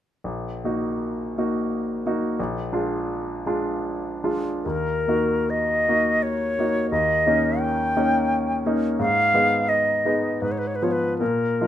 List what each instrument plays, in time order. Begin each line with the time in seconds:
0.24 grand piano A#1
0.64 grand piano A#3 D#4 F#4
1.38 grand piano A#3 D#4 F#4
2.06 grand piano A#3 D#4 F#4
2.39 grand piano A#1
2.73 grand piano G#3 D4 F4
3.46 grand piano G#3 D4 F4
4.24 grand piano G#3 D4 F4
4.63 grand piano D#2, flute A#4
5.08 grand piano A#3 D#4 F#4
5.50 flute D#5
5.88 grand piano A#3 D#4 F#4
6.23 flute C#5
6.59 grand piano A#3 D#4 F#4
6.91 grand piano D#2, flute D#5
7.26 grand piano A#3 C#4 D#4
7.60 flute G5
7.97 grand piano A#3 C#4 D#4
8.66 grand piano A#3 C#4 D#4
8.99 grand piano G#2, flute F5
9.34 grand piano G#3 B3 D#4
9.69 flute D#5
10.05 grand piano G#3 B3 D#4
10.42 grand piano G#2, flute B4
10.52 flute C#5
10.58 flute B4
10.67 flute C#5
10.76 flute B4
10.82 grand piano F3 B3 F4, flute C#5
10.92 flute B4
11.18 grand piano A#2, flute A#4
11.61 grand piano F3 D#4 F4